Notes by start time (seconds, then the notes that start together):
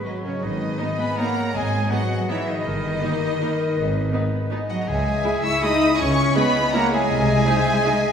Already playing: G#2 B3 D#4 B4
0.05 F#3 G#4 B4 D#5
0.24 C#3 C#4 D#4 A#4 C#5
0.42 G#1 G#2 D#3 D#4 B4 D#5
0.61 B3
0.79 B3 D#4 G#4 D#5
0.98 B3 B4 G#5 B5
1.17 A#3 B3 D#4 G#4 A#4 C#5 F#5 A#5
1.37 D#4
1.54 G#1 G#2 G#3 G#4 D#5 G#5
1.72 B3
1.90 F#3 B3 D#4 F#4 G#4 B4 D#5 F#5
2.11 B4
2.29 E3 B3 D#4 E4 G#4 C#5 E5
2.47 D#3 D#4 B4 D#5
2.65 G1 G2 A#4
2.83 A#3
3.02 A#3 D#4 G4 A#4
3.22 D#4
3.40 A#3 D#4 A#4
3.60 D#4
3.77 G#1 G#2 B4
3.95 B3
4.14 B3 D#4 G#4 B4
4.33 B4
4.51 B3 D#4 G#4 D#5
4.70 F#3 D#4 F#4 D#5 F#5
4.81 A#5
4.88 C#2 C#3 G#3 G#4 E5 G#5
5.06 G#3
5.24 G#3 E4 G#4 E5
5.43 E4 E5 C#6 E6
5.62 G#3 D#4 E4 G#4 D#5 B5 D#6
5.81 E4
5.98 C#2 C#3 C#4 C#5 G#5 C#6
6.17 G#3
6.35 G#3 B3 E4 G#4 B4 D#5 G#5 B5
6.55 E4
6.73 G#3 A#3 E4 G#4 A#4 C#5 F#5 A#5
6.91 G#3 E4 G#4 E5 G#5
7.10 C2 C3 D#5
7.27 G#3
7.46 G#3 D#4 G#4 C5
7.66 D#4
7.84 G#3 D#4 G#4 D#5